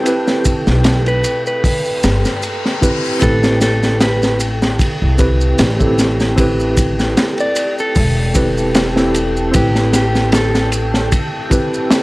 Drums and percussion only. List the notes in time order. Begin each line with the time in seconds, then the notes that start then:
0.06 ride, maracas
0.27 snare, maracas
0.45 kick, ride, maracas
0.67 snare, maracas
0.84 snare, ride, maracas
1.06 ride, maracas
1.24 ride, maracas
1.46 maracas
1.64 kick, open hi-hat, maracas
1.85 maracas
2.03 snare, ride, maracas
2.25 snare, maracas
2.42 ride, maracas
2.66 snare
2.82 kick, ride, maracas
3.05 maracas
3.22 kick, ride, maracas
3.43 snare, maracas
3.61 snare, ride, maracas
3.83 snare, maracas
4.01 snare, ride, maracas
4.23 snare, maracas
4.40 ride, maracas
4.62 snare, maracas
4.79 kick, ride, maracas
5.18 kick, ride, maracas
5.41 maracas
5.58 snare, ride, maracas
5.80 kick, maracas
5.99 snare, ride, maracas
6.20 snare, maracas
6.38 kick, ride, maracas
6.60 maracas
6.77 kick, ride, maracas
6.99 snare, maracas
7.17 snare, ride, maracas
7.38 ride, maracas
7.56 ride, maracas
7.79 maracas
7.95 kick, open hi-hat, maracas
8.35 kick, ride, maracas
8.57 maracas
8.74 snare, ride, maracas
8.96 snare, maracas
9.14 ride, maracas
9.37 maracas
9.54 kick, ride, maracas
9.75 snare, maracas
9.93 snare, ride, maracas
10.15 snare, maracas
10.32 snare, ride, maracas
10.55 snare, maracas
10.72 ride, maracas
10.94 snare, maracas
11.12 kick, ride, maracas
11.51 kick, ride, maracas
11.74 maracas
11.91 snare, ride, maracas